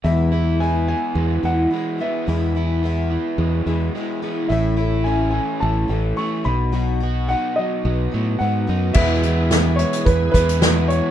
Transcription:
<<
  \new Staff \with { instrumentName = "Grand piano" } { \time 4/4 \key e \major \tempo 4 = 108 e''4 gis''8 gis''4 fis''4 e''8~ | e''2.~ e''8 r8 | e''4 gis''8 gis''8 a''4 cis'''8 b''8~ | b''8 r8 fis''8 dis''4. fis''4 |
e''4. cis''8 b'8 b'4 cis''8 | }
  \new Staff \with { instrumentName = "Tonewheel organ" } { \time 4/4 \key e \major r1 | r1 | r1 | r1 |
<gis b e' gis'>1 | }
  \new Staff \with { instrumentName = "Twelve-string acoustic guitar" } { \time 4/4 \key e \major <e, b, e gis b e'>8 <e gis b e'>8 <e gis b e'>4. <e gis b e'>8 <e gis b e'>8 <e gis b e'>8 | <e, b, e gis b e'>8 <e gis b e'>8 <e gis b e'>4. <e gis b e'>8 <e gis b e'>8 <e gis b e'>8 | <a, e a cis' e'>8 <a cis' e'>8 <e a cis' e'>4. <a cis' e'>8 <e a cis' e'>8 <b dis' fis'>8 | <b, fis b dis' fis'>8 <b dis' fis'>8 <fis b dis' fis'>4. <b dis' fis'>8 <fis b dis' fis'>8 <b dis' fis'>8 |
<e, b, e gis b e'>8 <e gis b e'>8 <e, b, e gis b e'>8 <e gis b e'>8 <e gis b e'>8 <e gis b e'>8 <e, b, e gis b e'>4 | }
  \new Staff \with { instrumentName = "Overdriven electric guitar" } { \clef bass \time 4/4 \key e \major e,8 e'8 b8 e8 gis8 e8 gis8 b8 | e,8 e'8 b8 e8 gis8 e8 gis8 b8 | a,8 e'8 cis'8 e8 a8 e8 a8 b,8 | b,8 fis'8 dis'8 fis8 b8 fis8 b8 dis'8 |
<e, b, e gis b e'>2~ <e, b, e gis b e'>8 <e, b, e gis b e'>8 <e, b, e gis b e'>4 | }
  \new Staff \with { instrumentName = "Fingered electric bass" } { \clef bass \time 4/4 \key e \major e,2 e,8 e,8 r4 | e,2 e,8 e,8 r4 | a,,2 a,,8 a,,8 r8 b,,8~ | b,,4. r8 b,,8 a,8 gis,8 fis,8 |
e,2 e,8 e,4. | }
  \new DrumStaff \with { instrumentName = "Drums" } \drummode { \time 4/4 r4 r4 r4 r4 | r4 r4 r4 r4 | r4 r4 r4 r4 | r4 r4 r4 r4 |
<cymc bd>8 hh8 <hh sn>8 hh16 hh16 <hh bd>8 <hh bd>16 hh16 <hh sn>8 hh8 | }
>>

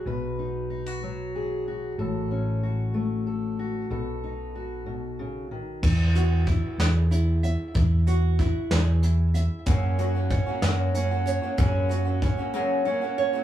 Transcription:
<<
  \new Staff \with { instrumentName = "Nylon-string guitar" } { \time 6/8 \key b \mixolydian \tempo 4. = 62 r2. | r2. | r2. | \key e \lydian e'8 fis'8 e'8 gis'8 e'8 e''8 |
e'8 fis'8 e'8 gis'8 e'8 e''8 | cis'8 fis'8 cis'8 ais'8 cis'8 cis''8 | cis'8 fis'8 cis'8 ais'8 cis'8 cis''8 | }
  \new Staff \with { instrumentName = "Steel-string acoustic guitar" } { \time 6/8 \key b \mixolydian << { b'8 dis'8 dis'16 fis'8. gis'8 fis'8 | a'8 cis'8 fis'4 a'8 fis'8 | a'8 dis'8 fis'2 | \key e \lydian r2. |
r2. | r2. | r2. | } \\ { <b, fis>4. fis4. | a,4. a4. | b,4. b,8 cis8 dis8 | r2. |
r2. | r2. | r2. | } >> }
  \new Staff \with { instrumentName = "Steel-string acoustic guitar" } { \time 6/8 \key b \mixolydian r2. | r2. | r2. | \key e \lydian r2. |
r2. | <fis, cis fis ais cis' fis'>8 <fis ais cis' fis'>16 <fis ais cis' fis'>8 <fis ais cis' fis'>16 <fis, cis fis ais cis' fis'>8 <fis ais cis' fis'>16 <fis ais cis' fis'>8 <fis ais cis' fis'>16 | <fis, cis fis ais cis' fis'>8 <fis ais cis' fis'>16 <fis ais cis' fis'>8 <fis ais cis' fis'>16 <fis, cis fis ais cis' fis'>8 <fis ais cis' fis'>16 <fis ais cis' fis'>8 <fis ais cis' fis'>16 | }
  \new Staff \with { instrumentName = "Fingered electric bass" } { \clef bass \time 6/8 \key b \mixolydian b,,2. | a,,2. | b,,2. | \key e \lydian e,4. e,4. |
e,4. e,4. | fis,4. fis,4. | fis,4. r4. | }
  \new DrumStaff \with { instrumentName = "Drums" } \drummode { \time 6/8 r4. r4. | r4. r4. | r4. r4. | <cymc bd>8 hh8 <hh bd>8 <hh sn>8 hh8 hh8 |
<hh bd>8 hh8 <hh bd>8 <hh sn>8 hh8 hh8 | <hh bd>8 hh8 <hh bd>8 <hh sn>8 hh8 hh8 | <hh bd>8 hh8 <hh bd>8 r4. | }
>>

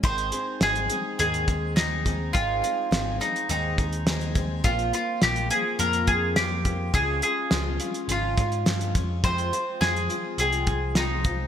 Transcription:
<<
  \new Staff \with { instrumentName = "Mandolin" } { \time 4/4 \key aes \major \tempo 4 = 104 c''4 aes'4 aes'4 ees'4 | f'4. ees'8 ees'4. r8 | f'8 f'8 g'8 aes'8 bes'8 aes'8 g'4 | aes'8 aes'4. f'4. r8 |
c''4 aes'4 aes'4 ees'4 | }
  \new Staff \with { instrumentName = "Twelve-string acoustic guitar" } { \time 4/4 \key aes \major <aes, ees aes c' ees' aes'>8 <aes c' ees' aes'>8 <aes c' ees' aes'>8 <aes c' ees' aes'>8 <aes, ees aes c' ees' aes'>8 <aes c' ees' aes'>8 <aes c' ees' aes'>8 <aes c' ees' aes'>8 | <aes, ees aes c' ees' aes'>8 <aes c' ees' aes'>8 <aes c' ees' aes'>8 <aes c' ees' aes'>8 <aes, ees aes c' ees' aes'>8 <aes c' ees' aes'>8 <aes c' ees' aes'>8 <aes c' ees' aes'>8 | <bes, f bes c' f'>8 <bes c' f'>8 <f bes c' f'>8 <bes c' f'>8 <bes, f bes c' f'>8 <bes c' f'>8 <f bes c' f'>8 <bes c' f'>8 | <des f aes des' f'>8 <aes des' f'>8 <f aes des' f'>8 <aes des' f'>8 <des f aes des' f'>8 <aes des' f'>8 <f aes des' f'>8 <aes des' f'>8 |
<f, c f aes c' f'>8 <f aes c' f'>8 <f aes c' f'>8 <f aes c' f'>8 <f, c f aes c' f'>8 <f aes c' f'>8 <f aes c' f'>8 <f aes c' f'>8 | }
  \new Staff \with { instrumentName = "Steel-string acoustic guitar" } { \clef bass \time 4/4 \key aes \major aes1 | r1 | r1 | r1 |
r1 | }
  \new Staff \with { instrumentName = "Picked electric bass" } { \clef bass \time 4/4 \key aes \major aes,,8 r8 aes,,8 r8 ees,2 | aes,,8 r8 aes,,8 r8 ees,2 | bes,,8 r8 bes,,8 r8 f,2 | des,8 r8 des,8 r8 aes,,8 aes,8 g,8 f,8 |
f,8 r8 f,8 r8 c,2 | }
  \new DrumStaff \with { instrumentName = "Drums" } \drummode { \time 4/4 <hh bd>16 hh16 hh8 <hh sn>16 hh16 hh8 hh16 hh16 <hh bd>8 <hh sn>8 <hh bd>8 | <hh bd>8 hh8 <hh sn>8 hh16 hh16 hh8 <hh bd>16 hh16 <hh sn>16 hh16 <hh bd>8 | <hh bd>16 hh16 hh8 <hh sn>16 hh16 hh8 hh16 hh16 <hh bd>8 <hh sn>8 <hh bd>8 | <hh bd>8 hh8 <hh sn>8 hh16 hh16 hh8 <hh bd sn>16 hh16 <hh sn>16 hh16 <hh bd>8 |
<hh bd>16 hh16 hh8 <hh sn>16 hh16 hh8 hh16 hh16 <hh bd>8 <hh sn>8 <hh bd>8 | }
>>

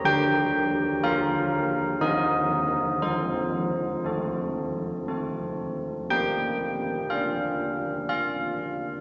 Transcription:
\new Staff \with { instrumentName = "Church bells" } { \time 3/4 \key bes \major \tempo 4 = 60 << { g''4 f''4 ees''4 | c''2~ c''8 r8 | g''4 f''4 f''4 | } \\ { d4 <f' bes'>4 <ees c' bes'>4 | f4 <c' a'>4 <c' a'>4 | bes4 d'2 | } >> }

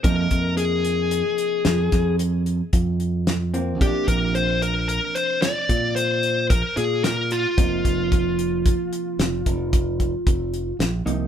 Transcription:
<<
  \new Staff \with { instrumentName = "Lead electric guitar" } { \time 7/4 \key f \dorian \tempo 4 = 112 bes'4 aes'2. r2. | g'8 bes'8 c''8 bes'8 bes'8 c''8 d''4 c''4 bes'8 aes'8 bes'8 f'8~ | f'1. r4 | }
  \new Staff \with { instrumentName = "Hollow-body jazz guitar" } { \clef bass \time 7/4 \key f \dorian <c f bes ees'>1.~ <c f bes ees'>8 <c f bes c'>8 | <c f bes d'>1.~ <c f bes d'>4 | <c f bes ees'>1.~ <c f bes ees'>8 <c f bes ees'>8 | }
  \new Staff \with { instrumentName = "Fingered electric bass" } { \clef bass \time 7/4 \key f \dorian f,8 f,2 r8 f,8 f,4. f,2 | bes,,16 r16 bes,,2 r4 bes,4. bes,,16 r16 bes,4. | f,,8 f,,2 r8 f,,8 f,,4. f,,4 bes,,8 c,8 | }
  \new DrumStaff \with { instrumentName = "Drums" } \drummode { \time 7/4 <hh bd>8 <hh bd>8 hh8 hh8 hh8 hh8 <hh sn>8 <hh bd sn>8 hh8 hh8 <hh bd>8 hh8 <hh sn>8 hh8 | <hh bd>8 <hh bd>8 hh8 hh8 hh8 hh8 <hh sn>8 <hh bd>8 hh8 hh8 <hh bd>8 hh8 <hh sn>8 hh8 | <hh bd>8 <hh bd>8 <hh bd>8 hh8 <hh bd>8 hh8 <hh sn>8 <hh bd>8 <hh bd>8 <hh bd>8 <hh bd>8 hh8 <hh sn>8 hh8 | }
>>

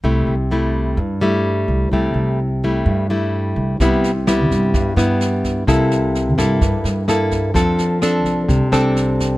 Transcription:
<<
  \new Staff \with { instrumentName = "Nylon-string guitar" } { \time 4/4 \key c \major \tempo 4 = 128 << { <g a e'>8 r8 <g a e'>4 r8 <g a e'>4. | <g a e'>4 r8 <g a e'>4 <g a e'>4. | <g b e'>8 r8 <g b e'>4. <g b e'>4. | <bes e' a'>4. <bes e' a'>4. <bes e' a'>4 |
<c' d' a'>4 <c' d' a'>4. <c' d' a'>4. | } \\ { c2 g,2 | c2 g,2 | c2 g,2 | c2 g,2 |
f2 c2 | } >> }
  \new Staff \with { instrumentName = "Upright bass" } { \clef bass \time 4/4 \key c \major c,8 c,4. g,4. c,8 | c,8 c,4. g,4. c,8 | c,4. g,8 g,16 r16 g,4. | c,4. g,8 g,16 r16 g,4. |
f,4. c,8 c,16 r16 c,4. | }
  \new DrumStaff \with { instrumentName = "Drums" } \drummode { \time 4/4 r4 r4 r4 r4 | r4 r4 r4 r4 | <bd sn>8 sn8 <ss sn>8 <bd sn>8 <bd sn>8 <ss sn>8 sn8 <bd sn>8 | <bd ss sn>8 sn8 sn8 <bd ss sn>8 <bd sn>8 sn8 <ss sn>8 <bd sn>8 |
<bd sn>8 sn8 <ss sn>8 <bd sn>8 <bd sn>8 <ss sn>8 sn8 <bd sn>8 | }
>>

